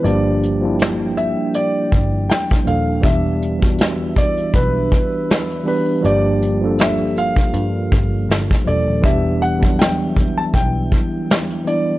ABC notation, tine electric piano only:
X:1
M:4/4
L:1/16
Q:"Swing 16ths" 1/4=80
K:Glyd
V:1 name="Tine electric piano"
[=F,G,_B,DG]3 [F,G,B,DE]6- [F,G,B,DE] z4 [F,G,B,DA]2 | [E,G,B,DG]3 [E,G,B,DF]6- [E,G,B,DF] z4 [E,G,B,DG]2 | [=F,G,_B,DG]3 [F,G,B,DA]6- [F,G,B,DA] z4 [F,G,B,DA]2 | [E,G,B,DG]3 [E,F,G,B,D]6- [E,F,G,B,D] z4 [E,G,B,DE]2 |]